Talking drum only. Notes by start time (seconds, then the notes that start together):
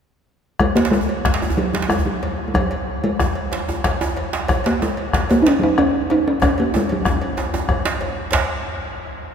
0.60 G#3
0.76 A#3
0.91 G#3
1.57 F#3
1.74 F#3
1.89 G#3
2.06 F#3
2.48 G#3
2.54 F#3
3.04 G#3
4.66 A#3
4.82 G#3
5.31 A#3
5.42 D#4
5.48 C#4
5.59 F#3 D#4
5.78 C#4
6.11 D#4
6.28 C#4
6.43 C#4
6.60 A#3
6.76 G#3
6.92 F#3